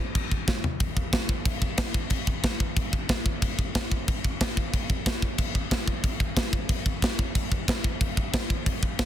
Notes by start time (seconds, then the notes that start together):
0.15 kick, china
0.32 kick
0.48 kick, snare
0.64 floor tom
0.80 kick, crash
0.97 kick
1.13 kick, snare, crash
1.29 kick
1.45 kick, crash
1.62 kick
1.77 kick, snare, crash
1.94 kick
2.10 kick, crash
2.27 kick
2.44 kick, snare, crash
2.60 kick
2.76 kick, crash
2.93 kick
3.09 kick, snare, crash
3.26 kick
3.42 kick, crash
3.59 kick
3.75 kick, snare, crash
3.92 kick
4.08 kick, crash
4.24 kick
4.41 kick, snare, crash
4.57 kick
4.74 kick, crash
4.90 kick
5.06 kick, snare, crash
5.22 kick
5.38 kick, crash
5.55 kick
5.71 kick, snare, crash
5.88 kick
6.04 kick, crash
6.20 kick
6.37 kick, snare, crash
6.53 kick
6.69 kick, crash
6.86 kick
7.02 kick, snare, crash
7.19 kick
7.35 kick, crash
7.52 kick
7.68 kick, snare, crash
7.84 kick
8.01 kick, crash
8.17 kick
8.34 kick, snare, crash
8.50 kick
8.66 kick, crash
8.83 kick
8.99 kick, snare, crash